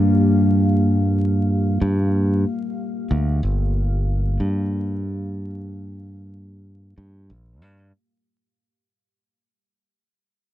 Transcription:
Already playing: G2 G3 A#3 G4 F5
1.82 G2
3.11 D2
3.43 G1
4.40 G2
6.98 G2
7.30 A#1
7.62 G2

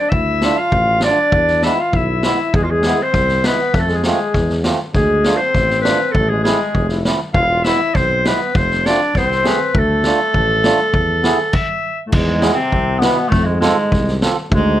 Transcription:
Already playing: D5
0.00 D4
0.09 D2 E4 E5, kick
0.41 A3 D4 F4, snare
0.57 F4 F5
0.72 A1, kick
1.01 A3 D4 F4 D5, snare
1.32 E2, kick
1.48 snare
1.62 G#3 B3 E4 E5, snare
1.77 F4 F5
1.93 B1 E4 E5, kick
2.23 G#3 B3 E4, snare
2.54 E2 G#3 G#4, kick
2.63 F4
2.69 G#3 G#4
2.83 G#3 B3 E4, snare
2.99 C4 C5
3.13 C2, kick, snare
3.29 snare
3.44 G#3 B3 E4 B4, snare
3.74 F2 A3, kick, snare
3.80 A4
3.88 G#3, snare
3.95 G#4
4.03 G#3 A3 C4 F4, snare
4.08 G#4
4.34 E2, kick, snare
4.50 snare
4.64 A3 C4 F4, snare
4.94 D2 G#3 G#4, kick, snare
5.24 A3 D4 F4, snare
5.37 C5
5.41 C4
5.54 A1, kick, snare
5.70 snare
5.81 A3 B4, snare
5.85 D4 F4
6.12 A1 A4, kick
6.16 A3
6.29 G#3 G#4
6.43 G#3 A3 C4 E4 G#4, snare
6.75 F1, kick
6.89 E4, snare
7.05 A3 C4 E4, snare
7.34 E1 F4 F5, kick
7.42 E4
7.48 F4
7.64 G#3 B3 E4 E5, snare
7.94 B1 C4 C5, kick, snare
8.25 G#3 B3 E4 B4, snare
8.54 F1 C4 C5, kick, snare
8.71 snare
8.85 A3 C4 D4 F4 D5, snare
9.14 C2 C4 C5, kick, snare
9.31 snare
9.43 A3 C4 G#4, snare
9.48 B4
9.74 D2 A3 A4, kick
10.04 A3 D4 F4, snare
10.34 A1, kick
10.64 A3 D4 F4, snare
10.93 E2, kick
11.23 B3 E4 G#4, snare
11.53 E5, kick, crash
12.06 A2 A3
12.12 E2 G#2 G#3, kick, crash
12.41 B3 E4 G#4, snare
12.54 C3 C4
12.72 C2, kick
12.98 B2 B3, snare
13.02 B3 E4 B4
13.29 F2 A2 A3, kick, snare
13.45 G#2 G#3
13.60 G#2 G#3 C4 F4 A4, snare
13.92 C2, kick, snare
14.08 snare
14.21 C4 F4 A4, snare
14.51 D2 G#2 G#3, kick

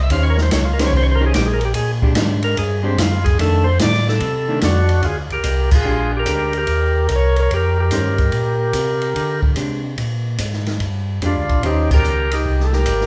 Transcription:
0.03 E5
0.10 D#2 D#3 C#4 G4 C5 F5, kick, ride
0.23 C#5
0.30 A#4
0.38 snare
0.42 C5
0.51 C#2 C#5, kick, snare, hi-hat pedal, ride
0.64 F4
0.73 A#4
0.79 D#3 C#4 G4 C5, snare, ride
0.87 C#5
0.93 C2, kick
0.97 C5
1.03 C#5
1.11 A#4 C5
1.20 D#3 C#4 G4 C5
1.26 G#4
1.34 A#1 G4, kick, snare, hi-hat pedal, ride
1.46 G#4
1.53 A#4
1.61 ride
1.65 G4
1.74 A#2 G#4, kick, ride
2.02 G#3 D4 G4, kick
2.15 G#2, snare, hi-hat pedal, ride
2.43 A#4, ride
2.57 G2 G#4, kick, ride
2.83 G#3 C4 D4 G4
2.98 F#2 F4, kick, snare, hi-hat pedal, ride
3.24 G#4, kick, ride
3.38 F2 D#3 A3 D4 A4, kick, ride
3.64 C5
3.79 A2 D5, kick, snare, hi-hat pedal, ride
3.94 snare
4.08 A4, snare
4.20 C3, kick, ride
4.48 D#3 A3 D4
4.61 F2 D4 F#4, kick, snare, hi-hat pedal, ride
4.89 ride
5.03 D2 F4 G#4, kick, ride
5.30 D2 G4 A#4, ride
5.44 C2, kick, hi-hat pedal, ride
5.71 F4, kick, crash
5.76 G#4
5.84 A#1 G#3 D4 G4
6.17 G4 A#4
6.25 D2 G#3 D4 G4, kick, hi-hat pedal, ride
6.53 ride
6.58 G4 A#4
6.67 D#2, kick, ride
7.09 C2 A#4, kick, hi-hat pedal, ride
7.15 C#5
7.36 A#4, ride
7.42 C#5
7.51 F2 G4, kick, ride
7.56 A#4
7.80 G4 A#4
7.91 G2 D#3 C#4 G4 C5, kick, snare, hi-hat pedal, ride
8.18 kick, ride
8.32 A#2, kick, ride
8.73 C3, kick, hi-hat pedal, ride
9.02 ride
9.15 D3, kick, ride
9.42 kick
9.56 C3 G#3 D4 G4, hi-hat pedal, ride
9.98 A#2, kick, ride
10.38 G#2, kick, hi-hat pedal, ride
10.53 snare
10.66 snare, ride
10.80 G2, kick, ride
11.22 F2 G#3 D4 F4 G4, kick, hi-hat pedal, ride
11.26 D4
11.36 D2
11.49 A#1, kick, ride
11.63 D#2 D#3 C#4 D#4 G4 C5, kick, ride
11.91 G4 A#4, kick, crash
12.04 C#2, hi-hat pedal
12.31 D#4 G4, ride
12.46 C2, kick
12.60 snare
12.64 A4
12.72 G4 A#4, snare
12.86 G#1, kick, hi-hat pedal, ride
13.01 snare

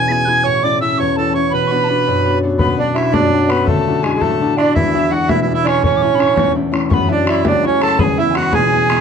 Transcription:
Already playing: E2 B2 C#4 G#4 G#5
0.08 B3 E4 G#4 G#6 B6
0.25 B3 E4 G#4 F#6 G#6
0.44 A2 C#5 C#6
0.63 A3 C#4 E4 D5 D6
0.81 A3 C#4 E4 E5 E6
0.98 E2 C#5 C#6
1.16 A3 C#4 E4 A4 A5
1.34 A3 C#4 E4 C#5 C#6
1.50 B2 B4 B5
1.67 B3 C#6
1.72 D4 F#4 B5
1.84 A5
1.89 B3 D4 F#4 B5
2.07 F#2
2.25 B3 D4 F#4
2.43 B3 D4 F#4
2.58 B2 B3 B5, bodhran
2.78 B3 D4 F#4 D5
2.94 B3 D4 E4 F#4 E5, bodhran
3.05 E5
3.12 F#2 D4 D5, bodhran
3.33 B3 D4 F#4
3.48 B3 D4 F#4 B5, bodhran
3.65 D3 A3 A5, bodhran
3.88 D4 E4 F#4
4.02 G#3 D4 E4 F#4 G#5, bodhran
4.14 G#3
4.20 A2 A3 A5, bodhran
4.41 D4 E4 F#4
4.57 D4 E4 F#4 E5, bodhran
4.62 D5
4.74 E2 E4 E5, bodhran
4.93 G#3 D4 E4 E5
5.11 G#3 D4 E4 F#4 F#5
5.28 B2 E4 E5, bodhran
5.41 E4
5.47 G#3 D4 E4
5.54 E4 E5
5.64 G#3 C#4 D4 E4 C#6, bodhran
5.82 A2 C#4 C#6, bodhran
5.97 D6
6.02 A3 C#4 E4 C#6
6.15 A3 C#4 B5
6.20 E4 C#6, bodhran
6.36 E2 C#6, bodhran
6.55 A3 C#4 E4
6.71 A3 C#4 E4, bodhran
6.90 F#2 B3 B5 C#6, bodhran
7.09 F#3 A3 D4 E4 E5
7.13 D5
7.25 F#3 A3 E4, bodhran
7.45 C#2 D4 E5, bodhran
7.49 D5
7.63 F#3 A3 C#4 E4 C#6
7.82 F#3 A3 E4 A4 A5, bodhran
7.99 E2 G#4 B5, bodhran
8.04 G#5
8.18 G#3 B3 E4 E5
8.31 F#5 G#5
8.35 G#3 B3 E4 F#4, bodhran
8.51 B2 G#4 G#5 B5, bodhran
8.72 G#3 B3 E4
8.90 G#3 B3 E4, bodhran

